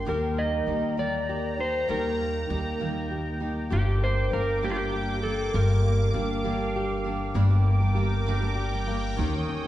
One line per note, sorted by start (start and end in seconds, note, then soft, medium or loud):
0.00 0.38 A#3 medium
0.00 3.68 A#3 medium
0.00 0.13 D4 medium
0.00 3.68 G5 medium
0.05 0.64 D#2 medium
0.05 0.67 D#3 medium
0.05 0.66 G3 medium
0.05 0.67 A#3 medium
0.05 0.67 D#4 medium
0.05 0.68 G4 medium
0.05 0.39 A#4 medium
0.05 3.67 A#5 medium
0.38 0.99 A#3 medium
0.38 0.99 D#5 medium
0.66 1.85 D#2 medium
0.66 0.98 G3 soft
0.66 0.97 A#3 medium
0.66 0.97 D#4 soft
0.66 0.96 G4 medium
0.97 1.60 D#3 soft
0.97 1.88 G3 medium
0.97 1.60 A#3 medium
0.97 1.58 D#4 medium
0.97 1.57 G4 medium
0.97 1.60 D5 medium
1.29 1.90 G4 medium
1.58 1.87 A#3 soft
1.58 1.88 D#4 soft
1.58 1.88 G4 medium
1.58 1.90 C5 medium
1.87 2.47 D#2 medium
1.87 2.49 D#3 medium
1.87 2.48 G3 medium
1.87 2.49 A#3 medium
1.87 2.49 D#4 medium
1.87 2.51 G4 medium
1.87 3.38 A#4 medium
2.20 2.80 A#3 soft
2.49 3.68 D#2 medium
2.49 2.80 G3 medium
2.49 2.80 A#3 medium
2.49 2.79 D#4 medium
2.49 2.78 G4 medium
2.80 3.42 D#3 medium
2.80 3.71 G3 medium
2.80 3.43 A#3 medium
2.80 3.40 D#4 medium
2.80 3.40 G4 medium
3.11 3.70 G4 medium
3.40 3.71 A#3 soft
3.40 3.71 D#4 soft
3.40 3.71 G4 medium
3.70 4.29 G1 loud
3.70 4.32 G2 medium
3.70 4.64 D3 medium
3.70 4.31 G3 medium
3.70 4.33 A#3 medium
3.70 7.32 A#3 medium
3.70 4.33 D4 medium
3.70 4.34 G4 medium
3.70 4.04 G4 medium
3.70 5.52 G5 medium
3.70 7.32 D6 medium
4.01 4.62 A#3 soft
4.01 4.33 C5 medium
4.32 5.50 G1 medium
4.32 4.62 G3 medium
4.32 4.62 A#3 medium
4.32 4.62 D4 medium
4.32 4.61 G4 medium
4.32 4.64 A#4 medium
4.62 5.24 G2 soft
4.62 5.54 D3 medium
4.62 5.25 G3 medium
4.62 5.24 A#3 medium
4.62 5.23 D4 medium
4.62 5.22 G4 medium
4.62 4.71 G4 medium
4.70 4.77 F4 medium
4.77 5.23 G4 medium
4.92 5.54 G4 medium
5.22 5.53 G3 soft
5.22 5.54 A#3 soft
5.22 5.54 D4 soft
5.22 5.53 G4 medium
5.22 5.55 A4 medium
5.54 6.11 G1 medium
5.54 6.14 G2 medium
5.54 6.45 D3 medium
5.54 6.13 G3 medium
5.54 6.14 A#3 medium
5.54 6.15 D4 medium
5.54 6.16 G4 medium
5.54 7.02 A#4 medium
5.54 7.35 F5 medium
5.85 6.44 A#3 medium
6.13 7.32 G1 medium
6.13 6.44 G3 medium
6.13 6.44 A#3 medium
6.13 6.43 D4 medium
6.13 6.43 G4 medium
6.44 7.06 G2 medium
6.44 7.34 D3 medium
6.44 7.07 G3 medium
6.44 7.06 A#3 medium
6.44 7.05 D4 medium
6.44 7.04 G4 medium
6.76 7.94 G4 medium
7.04 7.34 G3 soft
7.04 7.34 A#3 soft
7.04 7.35 D4 medium
7.04 7.35 G4 medium
7.34 9.13 G1 medium
7.34 7.50 G2 medium
7.34 7.50 D3 medium
7.34 7.51 G3 medium
7.34 7.50 A#3 medium
7.34 7.49 D4 medium
7.34 7.49 G4 medium
7.34 9.16 A#4 medium
7.34 9.67 G5 medium
7.34 9.16 D6 medium
7.50 7.81 G3 soft
7.50 7.81 A#3 soft
7.50 7.80 D4 medium
7.50 7.79 G4 medium
7.66 8.87 A#3 medium
7.80 7.94 G3 soft
7.80 7.95 A#3 medium
7.80 7.96 D4 medium
7.80 7.96 G4 medium
7.95 8.26 G3 medium
7.95 8.27 A#3 medium
7.95 8.27 D4 medium
7.95 8.27 G4 medium
8.26 8.42 G2 medium
8.26 8.42 D3 medium
8.26 8.42 G3 medium
8.26 8.41 A#3 medium
8.26 8.41 D4 medium
8.26 8.40 G4 medium
8.41 8.73 G3 soft
8.41 8.72 A#3 medium
8.41 8.71 D4 medium
8.41 8.69 G4 medium
8.56 9.23 G4 medium
8.71 8.85 G3 soft
8.71 8.86 A#3 soft
8.71 8.87 D4 medium
8.71 8.87 G4 medium
8.87 9.17 G3 medium
8.87 9.17 A#3 medium
8.87 9.18 D4 medium
8.87 9.18 G4 medium
9.15 9.67 D#2 medium
9.15 9.33 D#3 medium
9.15 9.33 A#3 medium
9.15 9.33 C#4 medium
9.15 9.67 C#5 medium
9.15 9.67 D#6 medium
9.19 9.33 G4 medium
9.19 9.32 A#4 medium
9.33 9.64 C#4 medium
9.33 9.63 G4 medium
9.33 9.61 A#4 medium
9.49 9.67 C#4 medium
9.63 9.67 G4 medium
9.63 9.67 A#4 medium